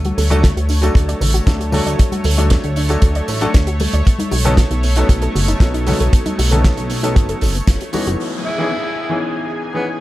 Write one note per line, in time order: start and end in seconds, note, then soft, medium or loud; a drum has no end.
0.00 0.12 D2 medium
0.00 0.27 F#3 medium
0.00 0.27 A3 medium
0.00 8.21 A3 medium
0.00 0.28 D4 medium
0.00 0.28 F#4 medium
0.00 0.28 A4 medium
0.00 8.21 C#5 medium
0.05 0.09 F#4 loud
0.05 closed hi-hat soft
0.05 high conga medium
0.18 0.51 D2 medium
0.18 0.29 A4 medium
0.18 open hi-hat loud
0.18 tambourine loud
0.18 high bongo medium
0.30 0.42 F#3 medium
0.30 0.42 A3 medium
0.30 0.42 D4 medium
0.30 0.42 F#4 medium
0.30 0.43 A4 loud
0.30 0.35 D5 medium
0.30 closed hi-hat soft
0.30 tambourine medium
0.30 high conga medium
0.30 low conga medium
0.43 0.51 A4 medium
0.43 kick loud
0.43 snare loud
0.43 closed hi-hat medium
0.43 tambourine soft
0.56 0.90 D2 loud
0.56 0.64 F#4 medium
0.56 closed hi-hat medium
0.69 0.81 D4 medium
0.69 open hi-hat medium
0.69 tambourine medium
0.81 1.43 F#3 medium
0.81 1.44 A3 medium
0.81 1.44 D4 medium
0.81 0.93 F#4 medium
0.81 1.44 F#4 medium
0.81 1.44 A4 medium
0.81 closed hi-hat soft
0.81 tambourine medium
0.95 1.15 D2 medium
0.95 1.06 A4 loud
0.95 kick loud
0.95 closed hi-hat medium
0.95 tambourine soft
1.08 1.13 D5 loud
1.08 closed hi-hat medium
1.08 high bongo soft
1.21 1.40 A1 loud
1.21 1.28 A4 medium
1.21 open hi-hat loud
1.21 tambourine medium
1.21 low conga medium
1.34 1.41 F#4 loud
1.34 closed hi-hat medium
1.34 tambourine soft
1.46 1.81 D2 loud
1.46 1.69 F#3 medium
1.46 1.70 A3 medium
1.46 1.70 D4 medium
1.46 1.54 D4 medium
1.46 1.70 F#4 medium
1.46 1.70 A4 medium
1.46 kick loud
1.46 snare loud
1.46 closed hi-hat medium
1.46 tambourine soft
1.60 1.67 F#4 loud
1.60 closed hi-hat medium
1.72 2.34 F#3 medium
1.72 2.34 A3 medium
1.72 2.35 D4 medium
1.72 2.35 F#4 medium
1.72 1.84 A4 medium
1.72 2.35 A4 medium
1.72 open hi-hat loud
1.72 tambourine medium
1.72 high conga medium
1.72 low conga medium
1.85 1.95 D2 medium
1.85 1.97 D5 medium
1.85 closed hi-hat medium
1.85 tambourine soft
1.99 2.10 D4 medium
1.99 kick loud
1.99 closed hi-hat loud
1.99 tambourine soft
2.12 2.16 F#4 loud
2.12 closed hi-hat medium
2.12 high conga medium
2.24 2.58 D2 loud
2.24 2.36 A4 medium
2.24 open hi-hat loud
2.24 tambourine loud
2.37 2.86 F#3 medium
2.37 2.86 A3 medium
2.37 2.86 D4 medium
2.37 2.86 F#4 medium
2.37 2.87 A4 medium
2.37 2.42 D5 medium
2.37 closed hi-hat medium
2.37 tambourine soft
2.37 high conga medium
2.50 2.58 A4 medium
2.50 kick loud
2.50 snare loud
2.50 closed hi-hat loud
2.50 tambourine soft
2.64 2.97 D2 loud
2.64 2.71 F#4 medium
2.64 closed hi-hat soft
2.76 2.88 D4 medium
2.76 open hi-hat medium
2.76 tambourine medium
2.89 3.38 F#3 medium
2.89 3.38 A3 medium
2.89 3.38 D4 medium
2.89 3.38 F#4 medium
2.89 3.01 F#4 medium
2.89 3.38 A4 medium
2.89 closed hi-hat medium
2.89 tambourine medium
3.02 3.21 D2 medium
3.02 3.14 A4 medium
3.02 kick loud
3.02 closed hi-hat loud
3.02 tambourine soft
3.15 3.20 D5 loud
3.15 closed hi-hat soft
3.28 3.47 A1 loud
3.28 3.36 A4 medium
3.28 open hi-hat loud
3.28 tambourine medium
3.41 3.48 F#3 medium
3.41 3.48 A3 medium
3.41 3.49 D4 medium
3.41 3.49 F#4 medium
3.41 3.49 F#4 loud
3.41 3.49 A4 loud
3.41 closed hi-hat soft
3.41 tambourine medium
3.54 3.88 D2 loud
3.54 3.62 D4 medium
3.54 kick loud
3.54 snare loud
3.54 closed hi-hat loud
3.54 tambourine soft
3.67 3.74 F#4 loud
3.67 closed hi-hat medium
3.67 high bongo soft
3.80 3.91 A4 medium
3.80 open hi-hat medium
3.80 tambourine medium
3.80 high bongo medium
3.80 high conga medium
3.93 4.03 D2 medium
3.93 4.04 D5 medium
3.93 closed hi-hat medium
3.93 tambourine medium
4.05 4.17 B3 loud
4.05 kick loud
4.05 closed hi-hat medium
4.05 tambourine soft
4.19 4.23 D#4 loud
4.19 closed hi-hat medium
4.19 high conga medium
4.31 4.65 B1 loud
4.31 4.43 F#4 medium
4.31 open hi-hat loud
4.31 tambourine loud
4.31 high bongo medium
4.44 4.56 F#3 medium
4.44 4.56 B3 medium
4.44 4.56 C#4 medium
4.44 4.57 D#4 medium
4.44 4.49 A4 medium
4.44 4.57 A4 loud
4.44 closed hi-hat medium
4.44 tambourine medium
4.44 high conga medium
4.44 low conga medium
4.57 4.65 F#4 medium
4.57 kick loud
4.57 snare loud
4.57 closed hi-hat medium
4.57 tambourine soft
4.71 5.04 B1 loud
4.71 4.78 D#4 medium
4.71 closed hi-hat medium
4.83 4.95 B3 medium
4.83 open hi-hat medium
4.83 tambourine medium
4.96 5.58 F#3 medium
4.96 5.58 B3 medium
4.96 5.58 C#4 medium
4.96 5.07 D#4 medium
4.96 5.58 D#4 medium
4.96 5.59 A4 medium
4.96 closed hi-hat medium
4.96 tambourine medium
5.09 5.28 B1 medium
5.09 5.20 F#4 loud
5.09 kick loud
5.09 closed hi-hat loud
5.09 tambourine soft
5.22 5.27 A4 loud
5.22 closed hi-hat medium
5.22 high bongo medium
5.35 5.54 F#1 loud
5.35 5.42 F#4 medium
5.35 open hi-hat loud
5.35 tambourine medium
5.35 low conga medium
5.48 5.55 D#4 loud
5.48 closed hi-hat medium
5.48 tambourine medium
5.60 5.94 B1 loud
5.60 5.84 F#3 medium
5.60 5.84 B3 medium
5.60 5.68 B3 medium
5.60 5.84 C#4 medium
5.60 5.84 D#4 medium
5.60 5.84 A4 medium
5.60 kick loud
5.60 snare loud
5.60 closed hi-hat loud
5.74 5.81 D#4 loud
5.74 closed hi-hat medium
5.86 6.48 F#3 medium
5.86 6.48 B3 medium
5.86 6.49 C#4 medium
5.86 6.49 D#4 medium
5.86 5.98 F#4 medium
5.86 6.49 A4 medium
5.86 open hi-hat loud
5.86 tambourine loud
5.86 high conga medium
5.86 low conga medium
6.00 6.09 B1 medium
6.00 6.11 A4 medium
6.00 closed hi-hat medium
6.00 tambourine soft
6.13 6.24 B3 loud
6.13 kick loud
6.13 closed hi-hat loud
6.13 tambourine soft
6.26 6.30 D#4 loud
6.26 closed hi-hat medium
6.26 high conga medium
6.38 6.72 B1 loud
6.38 6.49 F#4 medium
6.38 open hi-hat loud
6.38 tambourine loud
6.38 high bongo medium
6.51 7.00 F#3 medium
6.51 7.00 B3 medium
6.51 7.00 C#4 medium
6.51 7.00 D#4 medium
6.51 6.56 A4 medium
6.51 7.01 A4 medium
6.51 closed hi-hat medium
6.51 tambourine soft
6.51 high conga medium
6.51 low conga medium
6.64 6.72 F#4 medium
6.64 kick loud
6.64 snare loud
6.64 closed hi-hat medium
6.64 tambourine soft
6.77 7.18 B1 loud
6.77 6.85 D#4 medium
6.77 closed hi-hat medium
6.90 7.01 B3 medium
6.90 open hi-hat medium
6.90 tambourine medium
7.03 7.52 F#3 medium
7.03 7.52 B3 medium
7.03 7.52 C#4 medium
7.03 7.14 D#4 medium
7.03 7.52 D#4 medium
7.03 7.52 A4 medium
7.03 closed hi-hat medium
7.03 tambourine soft
7.15 7.35 F#1 medium
7.15 7.27 F#4 loud
7.15 kick loud
7.15 closed hi-hat loud
7.15 tambourine soft
7.29 7.33 A4 loud
7.29 closed hi-hat medium
7.41 7.61 F#1 loud
7.41 7.49 A4 medium
7.41 kick medium
7.41 open hi-hat loud
7.41 tambourine loud
7.41 high bongo soft
7.55 7.62 B3 medium
7.55 closed hi-hat medium
7.55 tambourine medium
7.67 7.77 F#1 loud
7.67 7.79 B3 medium
7.67 kick loud
7.67 snare loud
7.67 closed hi-hat loud
7.67 tambourine soft
7.81 7.88 F#4 medium
7.81 closed hi-hat soft
7.81 high bongo soft
7.93 8.45 E3 medium
7.93 8.45 B3 medium
7.93 8.45 C#4 medium
7.93 8.45 D#4 medium
7.93 8.45 F#4 medium
7.93 8.01 A4 medium
7.93 open hi-hat medium
7.93 tambourine medium
7.93 high bongo medium
7.93 high conga medium
8.07 8.16 F#1 loud
8.07 8.11 F#4 loud
8.07 closed hi-hat medium
8.07 tambourine medium
8.20 10.00 G#4 medium
8.20 10.00 G#5 medium
8.20 closed hi-hat medium
8.20 downlifter medium
8.32 closed hi-hat soft
8.44 9.18 E4 medium
8.44 closed hi-hat medium
8.58 8.70 E3 medium
8.58 8.70 B3 medium
8.58 8.70 C#4 medium
8.58 8.70 D#4 medium
8.58 8.70 G#4 medium
8.58 cross-stick soft
8.71 closed hi-hat medium
8.97 closed hi-hat medium
8.97 cabasa medium
9.09 9.71 E3 medium
9.09 9.71 B3 medium
9.09 9.72 C#4 medium
9.09 9.72 D#4 medium
9.09 9.72 G#4 medium
9.09 closed hi-hat soft
9.09 cabasa medium
9.22 closed hi-hat medium
9.22 cabasa soft
9.36 closed hi-hat medium
9.49 cabasa medium
9.62 closed hi-hat medium
9.62 cabasa soft
9.74 9.97 E3 medium
9.74 9.97 B3 medium
9.74 9.88 B3 medium
9.74 9.98 C#4 medium
9.74 9.98 D#4 medium
9.74 9.98 G#4 medium
9.74 closed hi-hat medium
9.74 cabasa soft
9.88 closed hi-hat soft